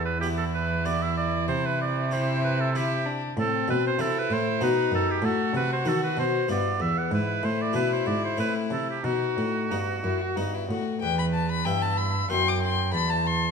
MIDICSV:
0, 0, Header, 1, 5, 480
1, 0, Start_track
1, 0, Key_signature, 1, "minor"
1, 0, Tempo, 627615
1, 1134, Time_signature, 3, 2, 24, 8
1, 5924, Tempo, 654308
1, 8324, Tempo, 635593
1, 10206, End_track
2, 0, Start_track
2, 0, Title_t, "Oboe"
2, 0, Program_c, 0, 68
2, 41, Note_on_c, 0, 71, 69
2, 154, Note_off_c, 0, 71, 0
2, 158, Note_on_c, 0, 67, 74
2, 215, Note_off_c, 0, 67, 0
2, 288, Note_on_c, 0, 69, 67
2, 342, Note_off_c, 0, 69, 0
2, 416, Note_on_c, 0, 71, 76
2, 656, Note_on_c, 0, 74, 85
2, 667, Note_off_c, 0, 71, 0
2, 780, Note_on_c, 0, 76, 71
2, 791, Note_off_c, 0, 74, 0
2, 890, Note_off_c, 0, 76, 0
2, 895, Note_on_c, 0, 74, 80
2, 1130, Note_off_c, 0, 74, 0
2, 1134, Note_on_c, 0, 72, 84
2, 1268, Note_on_c, 0, 71, 76
2, 1280, Note_off_c, 0, 72, 0
2, 1382, Note_off_c, 0, 71, 0
2, 1387, Note_on_c, 0, 74, 76
2, 1627, Note_on_c, 0, 72, 66
2, 1639, Note_off_c, 0, 74, 0
2, 1863, Note_off_c, 0, 72, 0
2, 1868, Note_on_c, 0, 71, 76
2, 1993, Note_on_c, 0, 69, 68
2, 2005, Note_off_c, 0, 71, 0
2, 2115, Note_on_c, 0, 67, 72
2, 2126, Note_off_c, 0, 69, 0
2, 2422, Note_off_c, 0, 67, 0
2, 2599, Note_on_c, 0, 69, 82
2, 2812, Note_off_c, 0, 69, 0
2, 2831, Note_on_c, 0, 71, 82
2, 2941, Note_off_c, 0, 71, 0
2, 2959, Note_on_c, 0, 72, 80
2, 3065, Note_on_c, 0, 69, 86
2, 3076, Note_off_c, 0, 72, 0
2, 3203, Note_on_c, 0, 71, 74
2, 3215, Note_off_c, 0, 69, 0
2, 3311, Note_on_c, 0, 72, 79
2, 3323, Note_off_c, 0, 71, 0
2, 3546, Note_on_c, 0, 71, 76
2, 3558, Note_off_c, 0, 72, 0
2, 3774, Note_off_c, 0, 71, 0
2, 3786, Note_on_c, 0, 69, 77
2, 3909, Note_on_c, 0, 67, 67
2, 3920, Note_off_c, 0, 69, 0
2, 4017, Note_on_c, 0, 69, 74
2, 4028, Note_off_c, 0, 67, 0
2, 4251, Note_off_c, 0, 69, 0
2, 4256, Note_on_c, 0, 71, 83
2, 4369, Note_off_c, 0, 71, 0
2, 4381, Note_on_c, 0, 72, 71
2, 4497, Note_on_c, 0, 69, 81
2, 4508, Note_off_c, 0, 72, 0
2, 4610, Note_off_c, 0, 69, 0
2, 4615, Note_on_c, 0, 71, 60
2, 4730, Note_off_c, 0, 71, 0
2, 4736, Note_on_c, 0, 72, 74
2, 4968, Note_off_c, 0, 72, 0
2, 4979, Note_on_c, 0, 74, 69
2, 5213, Note_on_c, 0, 76, 78
2, 5225, Note_off_c, 0, 74, 0
2, 5337, Note_on_c, 0, 78, 68
2, 5349, Note_off_c, 0, 76, 0
2, 5451, Note_off_c, 0, 78, 0
2, 5461, Note_on_c, 0, 71, 70
2, 5696, Note_on_c, 0, 72, 78
2, 5708, Note_off_c, 0, 71, 0
2, 5829, Note_on_c, 0, 74, 69
2, 5840, Note_off_c, 0, 72, 0
2, 5927, Note_off_c, 0, 74, 0
2, 5931, Note_on_c, 0, 71, 72
2, 6043, Note_off_c, 0, 71, 0
2, 6057, Note_on_c, 0, 72, 63
2, 6163, Note_on_c, 0, 74, 71
2, 6174, Note_off_c, 0, 72, 0
2, 6278, Note_off_c, 0, 74, 0
2, 6290, Note_on_c, 0, 72, 65
2, 6398, Note_off_c, 0, 72, 0
2, 6403, Note_on_c, 0, 71, 67
2, 6508, Note_off_c, 0, 71, 0
2, 6643, Note_on_c, 0, 69, 62
2, 6757, Note_off_c, 0, 69, 0
2, 6775, Note_on_c, 0, 67, 58
2, 6880, Note_on_c, 0, 66, 65
2, 6891, Note_off_c, 0, 67, 0
2, 8091, Note_off_c, 0, 66, 0
2, 8327, Note_on_c, 0, 71, 47
2, 8809, Note_on_c, 0, 76, 55
2, 8821, Note_off_c, 0, 71, 0
2, 9291, Note_on_c, 0, 79, 64
2, 9303, Note_off_c, 0, 76, 0
2, 9766, Note_off_c, 0, 79, 0
2, 9771, Note_on_c, 0, 81, 59
2, 10206, Note_off_c, 0, 81, 0
2, 10206, End_track
3, 0, Start_track
3, 0, Title_t, "Violin"
3, 0, Program_c, 1, 40
3, 0, Note_on_c, 1, 59, 55
3, 161, Note_off_c, 1, 59, 0
3, 168, Note_on_c, 1, 64, 62
3, 1589, Note_off_c, 1, 64, 0
3, 1617, Note_on_c, 1, 64, 71
3, 2091, Note_off_c, 1, 64, 0
3, 2100, Note_on_c, 1, 64, 65
3, 2339, Note_on_c, 1, 62, 60
3, 2351, Note_off_c, 1, 64, 0
3, 2580, Note_off_c, 1, 62, 0
3, 2592, Note_on_c, 1, 60, 63
3, 3052, Note_off_c, 1, 60, 0
3, 3062, Note_on_c, 1, 64, 65
3, 3529, Note_on_c, 1, 63, 77
3, 3541, Note_off_c, 1, 64, 0
3, 4002, Note_off_c, 1, 63, 0
3, 4006, Note_on_c, 1, 66, 70
3, 4951, Note_off_c, 1, 66, 0
3, 4969, Note_on_c, 1, 59, 59
3, 5438, Note_on_c, 1, 64, 66
3, 5450, Note_off_c, 1, 59, 0
3, 6866, Note_off_c, 1, 64, 0
3, 6871, Note_on_c, 1, 63, 54
3, 7304, Note_off_c, 1, 63, 0
3, 7361, Note_on_c, 1, 63, 51
3, 7420, Note_off_c, 1, 63, 0
3, 7601, Note_on_c, 1, 64, 52
3, 7734, Note_on_c, 1, 66, 53
3, 7745, Note_off_c, 1, 64, 0
3, 7841, Note_on_c, 1, 63, 53
3, 7852, Note_off_c, 1, 66, 0
3, 7976, Note_on_c, 1, 64, 46
3, 7987, Note_off_c, 1, 63, 0
3, 8083, Note_off_c, 1, 64, 0
3, 8087, Note_on_c, 1, 66, 50
3, 8315, Note_off_c, 1, 66, 0
3, 8319, Note_on_c, 1, 79, 74
3, 8436, Note_off_c, 1, 79, 0
3, 8454, Note_on_c, 1, 83, 62
3, 8501, Note_off_c, 1, 83, 0
3, 8564, Note_on_c, 1, 81, 62
3, 8686, Note_off_c, 1, 81, 0
3, 8698, Note_on_c, 1, 83, 69
3, 8803, Note_on_c, 1, 79, 68
3, 8814, Note_off_c, 1, 83, 0
3, 8930, Note_on_c, 1, 81, 66
3, 8941, Note_off_c, 1, 79, 0
3, 9042, Note_on_c, 1, 83, 66
3, 9054, Note_off_c, 1, 81, 0
3, 9288, Note_off_c, 1, 83, 0
3, 9295, Note_on_c, 1, 84, 86
3, 9429, Note_on_c, 1, 86, 67
3, 9441, Note_off_c, 1, 84, 0
3, 9533, Note_off_c, 1, 86, 0
3, 9537, Note_on_c, 1, 84, 73
3, 9768, Note_off_c, 1, 84, 0
3, 9772, Note_on_c, 1, 83, 76
3, 9896, Note_on_c, 1, 81, 67
3, 9907, Note_off_c, 1, 83, 0
3, 10021, Note_on_c, 1, 84, 72
3, 10033, Note_off_c, 1, 81, 0
3, 10206, Note_off_c, 1, 84, 0
3, 10206, End_track
4, 0, Start_track
4, 0, Title_t, "Harpsichord"
4, 0, Program_c, 2, 6
4, 0, Note_on_c, 2, 40, 43
4, 175, Note_on_c, 2, 59, 35
4, 176, Note_on_c, 2, 64, 34
4, 179, Note_on_c, 2, 67, 36
4, 521, Note_off_c, 2, 59, 0
4, 522, Note_off_c, 2, 64, 0
4, 524, Note_off_c, 2, 67, 0
4, 654, Note_on_c, 2, 59, 33
4, 656, Note_on_c, 2, 64, 34
4, 656, Note_on_c, 2, 67, 34
4, 1001, Note_off_c, 2, 59, 0
4, 1002, Note_off_c, 2, 64, 0
4, 1002, Note_off_c, 2, 67, 0
4, 1106, Note_off_c, 2, 40, 0
4, 1134, Note_on_c, 2, 48, 43
4, 1616, Note_on_c, 2, 60, 36
4, 1622, Note_on_c, 2, 64, 35
4, 1624, Note_on_c, 2, 67, 38
4, 1965, Note_off_c, 2, 60, 0
4, 1968, Note_off_c, 2, 64, 0
4, 1970, Note_off_c, 2, 67, 0
4, 2106, Note_on_c, 2, 60, 38
4, 2111, Note_on_c, 2, 64, 38
4, 2111, Note_on_c, 2, 67, 34
4, 2450, Note_off_c, 2, 60, 0
4, 2454, Note_off_c, 2, 64, 0
4, 2454, Note_off_c, 2, 67, 0
4, 2551, Note_off_c, 2, 48, 0
4, 2579, Note_on_c, 2, 45, 44
4, 2794, Note_off_c, 2, 45, 0
4, 2813, Note_on_c, 2, 47, 47
4, 3029, Note_off_c, 2, 47, 0
4, 3051, Note_on_c, 2, 60, 39
4, 3051, Note_on_c, 2, 64, 38
4, 3053, Note_on_c, 2, 48, 47
4, 3057, Note_on_c, 2, 69, 38
4, 3267, Note_off_c, 2, 48, 0
4, 3292, Note_on_c, 2, 45, 53
4, 3392, Note_off_c, 2, 60, 0
4, 3393, Note_off_c, 2, 64, 0
4, 3396, Note_off_c, 2, 69, 0
4, 3504, Note_off_c, 2, 45, 0
4, 3526, Note_on_c, 2, 59, 33
4, 3528, Note_on_c, 2, 47, 42
4, 3530, Note_on_c, 2, 63, 39
4, 3535, Note_on_c, 2, 66, 35
4, 3741, Note_off_c, 2, 47, 0
4, 3762, Note_on_c, 2, 42, 47
4, 3973, Note_off_c, 2, 59, 0
4, 3974, Note_off_c, 2, 63, 0
4, 3977, Note_off_c, 2, 66, 0
4, 3978, Note_off_c, 2, 42, 0
4, 3993, Note_on_c, 2, 45, 46
4, 4215, Note_off_c, 2, 45, 0
4, 4241, Note_on_c, 2, 48, 47
4, 4460, Note_off_c, 2, 48, 0
4, 4476, Note_on_c, 2, 51, 42
4, 4480, Note_on_c, 2, 59, 35
4, 4481, Note_on_c, 2, 63, 39
4, 4482, Note_on_c, 2, 66, 37
4, 4698, Note_off_c, 2, 51, 0
4, 4718, Note_on_c, 2, 47, 49
4, 4829, Note_off_c, 2, 59, 0
4, 4830, Note_off_c, 2, 63, 0
4, 4831, Note_off_c, 2, 66, 0
4, 4939, Note_off_c, 2, 47, 0
4, 4959, Note_on_c, 2, 43, 42
4, 4963, Note_on_c, 2, 59, 33
4, 4965, Note_on_c, 2, 64, 35
4, 4966, Note_on_c, 2, 67, 33
4, 5179, Note_off_c, 2, 43, 0
4, 5200, Note_on_c, 2, 40, 49
4, 5413, Note_off_c, 2, 59, 0
4, 5414, Note_off_c, 2, 64, 0
4, 5415, Note_off_c, 2, 67, 0
4, 5418, Note_off_c, 2, 40, 0
4, 5441, Note_on_c, 2, 44, 45
4, 5659, Note_off_c, 2, 44, 0
4, 5683, Note_on_c, 2, 45, 45
4, 5901, Note_off_c, 2, 45, 0
4, 5913, Note_on_c, 2, 62, 38
4, 5914, Note_on_c, 2, 47, 46
4, 5918, Note_on_c, 2, 64, 40
4, 6129, Note_off_c, 2, 47, 0
4, 6156, Note_on_c, 2, 44, 40
4, 6255, Note_off_c, 2, 62, 0
4, 6258, Note_off_c, 2, 64, 0
4, 6369, Note_off_c, 2, 44, 0
4, 6385, Note_on_c, 2, 45, 38
4, 6388, Note_on_c, 2, 60, 31
4, 6391, Note_on_c, 2, 64, 28
4, 6604, Note_off_c, 2, 45, 0
4, 6627, Note_on_c, 2, 48, 47
4, 6843, Note_off_c, 2, 60, 0
4, 6845, Note_off_c, 2, 64, 0
4, 6849, Note_off_c, 2, 48, 0
4, 6875, Note_on_c, 2, 47, 43
4, 7096, Note_off_c, 2, 47, 0
4, 7123, Note_on_c, 2, 45, 39
4, 7341, Note_off_c, 2, 45, 0
4, 7369, Note_on_c, 2, 43, 36
4, 7371, Note_on_c, 2, 59, 33
4, 7373, Note_on_c, 2, 63, 37
4, 7585, Note_off_c, 2, 43, 0
4, 7608, Note_on_c, 2, 42, 40
4, 7716, Note_off_c, 2, 59, 0
4, 7718, Note_off_c, 2, 63, 0
4, 7824, Note_off_c, 2, 42, 0
4, 7851, Note_on_c, 2, 43, 39
4, 7851, Note_on_c, 2, 59, 34
4, 7854, Note_on_c, 2, 63, 34
4, 8066, Note_off_c, 2, 43, 0
4, 8096, Note_on_c, 2, 45, 41
4, 8195, Note_off_c, 2, 59, 0
4, 8197, Note_off_c, 2, 63, 0
4, 8307, Note_off_c, 2, 45, 0
4, 8331, Note_on_c, 2, 40, 46
4, 8784, Note_off_c, 2, 40, 0
4, 8812, Note_on_c, 2, 43, 42
4, 8814, Note_on_c, 2, 59, 36
4, 8816, Note_on_c, 2, 64, 38
4, 9160, Note_off_c, 2, 59, 0
4, 9161, Note_off_c, 2, 64, 0
4, 9263, Note_off_c, 2, 43, 0
4, 9292, Note_on_c, 2, 42, 39
4, 9292, Note_on_c, 2, 59, 36
4, 9292, Note_on_c, 2, 64, 36
4, 9636, Note_off_c, 2, 59, 0
4, 9636, Note_off_c, 2, 64, 0
4, 9739, Note_off_c, 2, 42, 0
4, 9764, Note_on_c, 2, 40, 41
4, 10206, Note_off_c, 2, 40, 0
4, 10206, End_track
5, 0, Start_track
5, 0, Title_t, "Cello"
5, 0, Program_c, 3, 42
5, 0, Note_on_c, 3, 40, 63
5, 1139, Note_on_c, 3, 48, 62
5, 1151, Note_off_c, 3, 40, 0
5, 2575, Note_off_c, 3, 48, 0
5, 2579, Note_on_c, 3, 45, 71
5, 2801, Note_off_c, 3, 45, 0
5, 2815, Note_on_c, 3, 47, 60
5, 3037, Note_off_c, 3, 47, 0
5, 3050, Note_on_c, 3, 48, 59
5, 3272, Note_off_c, 3, 48, 0
5, 3289, Note_on_c, 3, 45, 64
5, 3510, Note_off_c, 3, 45, 0
5, 3524, Note_on_c, 3, 47, 57
5, 3746, Note_off_c, 3, 47, 0
5, 3758, Note_on_c, 3, 42, 57
5, 3984, Note_off_c, 3, 42, 0
5, 3994, Note_on_c, 3, 45, 67
5, 4223, Note_off_c, 3, 45, 0
5, 4235, Note_on_c, 3, 48, 65
5, 4464, Note_off_c, 3, 48, 0
5, 4477, Note_on_c, 3, 51, 64
5, 4706, Note_off_c, 3, 51, 0
5, 4722, Note_on_c, 3, 47, 55
5, 4948, Note_off_c, 3, 47, 0
5, 4965, Note_on_c, 3, 43, 55
5, 5189, Note_off_c, 3, 43, 0
5, 5206, Note_on_c, 3, 40, 50
5, 5429, Note_off_c, 3, 40, 0
5, 5442, Note_on_c, 3, 44, 74
5, 5666, Note_off_c, 3, 44, 0
5, 5687, Note_on_c, 3, 45, 58
5, 5910, Note_off_c, 3, 45, 0
5, 5926, Note_on_c, 3, 47, 62
5, 6143, Note_off_c, 3, 47, 0
5, 6158, Note_on_c, 3, 44, 53
5, 6377, Note_off_c, 3, 44, 0
5, 6394, Note_on_c, 3, 45, 48
5, 6615, Note_off_c, 3, 45, 0
5, 6628, Note_on_c, 3, 48, 53
5, 6856, Note_off_c, 3, 48, 0
5, 6872, Note_on_c, 3, 47, 55
5, 7102, Note_off_c, 3, 47, 0
5, 7118, Note_on_c, 3, 45, 53
5, 7346, Note_off_c, 3, 45, 0
5, 7363, Note_on_c, 3, 43, 48
5, 7589, Note_off_c, 3, 43, 0
5, 7604, Note_on_c, 3, 42, 53
5, 7829, Note_off_c, 3, 42, 0
5, 7846, Note_on_c, 3, 43, 47
5, 8071, Note_off_c, 3, 43, 0
5, 8085, Note_on_c, 3, 45, 52
5, 8309, Note_off_c, 3, 45, 0
5, 8327, Note_on_c, 3, 40, 56
5, 8806, Note_on_c, 3, 43, 52
5, 8817, Note_off_c, 3, 40, 0
5, 9287, Note_off_c, 3, 43, 0
5, 9292, Note_on_c, 3, 42, 54
5, 9764, Note_on_c, 3, 40, 63
5, 9776, Note_off_c, 3, 42, 0
5, 10206, Note_off_c, 3, 40, 0
5, 10206, End_track
0, 0, End_of_file